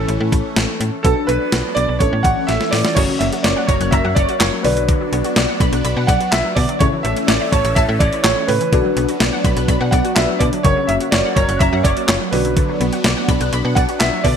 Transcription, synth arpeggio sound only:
2.97 3.05 C#3 medium
3.09 3.17 F#3 medium
3.21 3.29 A#3 medium
3.32 3.41 F#4 medium
3.44 3.53 C#5 medium
3.56 3.65 F#5 medium
3.69 3.77 A#5 medium
3.80 3.89 F#6 medium
3.93 4.01 A#5 loud
4.05 4.13 F#5 medium
4.17 4.25 C#5 medium
4.29 4.37 F#4 medium
4.40 4.49 A#3 medium
4.52 4.61 F#3 medium
4.64 4.73 D3 medium
4.77 4.85 F#3 medium
4.88 4.97 D3 loud
5.01 5.09 F#3 medium
5.13 5.21 B3 medium
5.25 5.33 F#4 medium
5.36 5.45 D5 medium
5.49 5.57 F#5 medium
5.61 5.69 B5 loud
5.73 5.81 F#6 medium
5.84 5.93 B5 loud
5.96 6.05 F#5 medium
6.09 6.17 D5 medium
6.21 6.29 F#4 medium
6.33 6.41 B3 medium
6.45 6.53 F#3 medium
6.57 6.65 D3 medium
6.68 6.77 F#3 medium
6.81 6.89 C#3 loud
6.92 7.01 E3 medium
7.05 7.13 A3 medium
7.17 7.25 E4 medium
7.28 7.37 C#5 medium
7.41 7.49 E5 medium
7.53 7.61 A5 medium
7.65 7.73 E6 medium
7.77 7.85 A5 loud
7.88 7.97 E5 medium
8.00 8.09 C#5 medium
8.13 8.21 E4 medium
8.25 8.33 A3 medium
8.37 8.45 E3 medium
8.49 8.57 C#3 medium
8.60 8.69 E3 medium
8.73 8.81 D3 loud
8.85 8.93 F#3 medium
8.97 9.05 B3 medium
9.09 9.17 F#4 medium
9.21 9.29 D5 medium
9.32 9.41 F#5 medium
9.45 9.53 B5 medium
9.57 9.65 F#6 medium
9.69 9.77 B5 loud
9.80 9.89 F#5 medium
9.92 10.01 D5 medium
10.04 10.13 F#4 medium
10.16 10.25 B3 medium
10.28 10.37 F#3 medium
10.41 10.49 D3 medium
10.53 10.61 F#3 medium
10.64 10.73 C#3 loud
10.77 10.85 F#3 medium
10.89 10.97 A#3 medium
11.01 11.09 F#4 medium
11.13 11.21 C#5 medium
11.25 11.33 F#5 medium
11.37 11.45 A#5 loud
11.49 11.57 F#6 medium
11.61 11.69 A#5 loud
11.73 11.81 F#5 medium
11.85 11.93 C#5 medium
11.97 12.05 F#4 medium
12.09 12.17 A#3 medium
12.21 12.29 F#3 medium
12.33 12.41 D3 medium
12.45 12.53 F#3 medium
12.57 12.65 D3 loud
12.69 12.77 F#3 medium
12.81 12.89 B3 medium
12.93 13.01 F#4 medium
13.05 13.13 D5 loud
13.17 13.25 F#5 medium
13.29 13.37 B5 loud
13.41 13.49 F#6 medium
13.53 13.61 B5 loud
13.65 13.73 F#5 medium
13.77 13.85 D5 medium
13.89 13.97 F#4 medium
14.01 14.09 B3 medium
14.13 14.21 F#3 medium
14.25 14.33 D3 medium

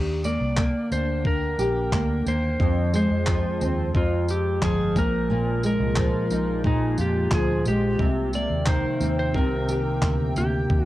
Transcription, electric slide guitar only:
0.00 0.26 G4 medium
0.25 0.92 D5 medium
0.92 1.26 C5 medium
1.27 2.30 A#4 medium
2.28 2.94 C5 medium
2.96 3.99 C5 medium
3.97 4.31 F4 medium
4.31 4.61 G4 medium
4.65 4.98 G#4 medium
4.99 5.65 A#4 loud
5.66 6.62 A#4 medium
6.67 6.97 D#4 medium
7.01 7.34 G4 medium
7.34 7.68 G#4 medium
7.68 8.31 G4 loud
8.35 8.69 D5 medium
8.69 9.18 C5 medium
9.19 9.36 C5 medium
9.36 10.33 A#4 medium
10.38 10.85 G4 loud

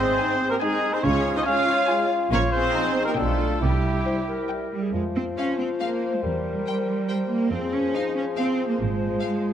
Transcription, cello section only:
0.00 0.11 G#2 medium
1.04 1.38 C#3 medium
2.32 2.66 A#2 medium
3.17 3.52 B2 medium
3.62 3.97 C3 medium
4.72 4.92 G3 medium
4.94 5.02 G#3 medium
5.16 5.24 C4 medium
5.37 5.58 C#4 medium
5.59 5.67 C4 medium
5.80 6.11 A#3 medium
6.12 6.23 G#3 medium
6.23 7.28 G3 medium
7.30 7.51 A#3 medium
7.52 7.73 C4 medium
7.73 7.94 C#4 medium
7.95 8.15 D#4 medium
8.16 8.24 C#4 medium
8.37 8.68 C4 medium
8.69 8.79 A#3 medium
8.79 9.53 G#3 medium

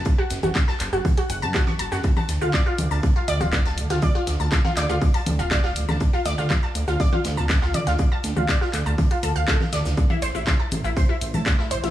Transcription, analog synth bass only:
0.31 0.40 F#1 medium
0.43 0.52 F#1 medium
0.80 0.89 F#1 loud
0.93 1.02 F#1 medium
1.30 1.44 F#1 loud
1.42 1.81 F#2 medium
1.79 1.89 F#1 loud
1.92 2.01 F#1 medium
2.29 2.38 D2 medium
2.41 2.50 D2 medium
2.78 2.88 D2 medium
2.91 3.00 D2 medium
3.28 3.42 D2 medium
3.41 3.79 D1 medium
3.78 3.87 D2 loud
3.90 3.99 D2 medium
4.27 4.37 D2 medium
4.40 4.49 D2 medium
4.77 4.86 D2 medium
4.89 4.98 D2 medium
5.26 5.41 D2 loud
5.39 5.77 D1 medium
5.76 5.85 D2 loud
5.89 5.98 D2 medium
6.26 6.35 D2 loud
6.38 6.47 D2 medium
6.75 6.84 D2 medium
6.88 6.97 D2 medium
7.25 7.39 D2 loud
7.37 7.76 D1 medium
7.74 7.84 D2 loud
7.87 7.96 D2 medium
8.24 8.33 D2 loud
8.37 8.46 D2 medium
8.74 8.83 D2 medium
8.86 8.95 D2 medium
9.23 9.32 D2 medium
9.36 9.45 D2 medium
9.73 9.82 D2 loud
9.85 9.94 D2 medium
10.22 10.32 A1 loud
10.35 10.44 A1 medium
10.72 10.81 A1 loud
10.85 10.93 A1 medium
11.21 11.36 A1 loud
11.34 11.73 A2 medium
11.71 11.80 A1 medium
11.84 11.90 A1 medium

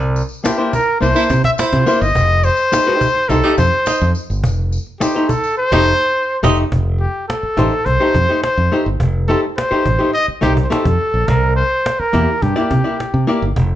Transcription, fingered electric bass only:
0.00 0.21 C2 loud
1.02 1.13 C2 medium
1.30 1.41 C3 loud
1.73 1.84 C3 medium
2.01 2.13 G1 loud
2.15 2.49 F1 loud
3.30 3.41 C2 medium
3.58 3.69 F2 medium
4.02 4.12 F2 loud
4.30 4.44 G1 medium
4.44 4.77 F1 loud
5.72 5.92 F1 loud
6.44 6.63 F1 medium
6.72 7.05 F1 loud
7.43 muted fingered electric bass stroke soft
7.58 7.69 A1 medium
7.86 7.97 C2 medium
8.15 8.26 F2 medium
8.58 8.69 F2 medium
8.86 8.97 G1 medium
9.00 9.33 F1 loud
9.72 muted fingered electric bass stroke soft
9.86 9.97 A1 medium
10.28 muted fingered electric bass stroke soft
10.43 10.65 C2 medium
10.85 10.97 F2 medium
11.14 11.25 A#1 medium
11.28 11.62 C2 loud
12.00 muted fingered electric bass stroke soft
12.14 12.25 E2 medium
12.42 12.54 G2 medium
12.71 12.82 C3 medium
13.14 13.25 C3 medium
13.42 13.53 G1 medium
13.56 13.75 F1 loud

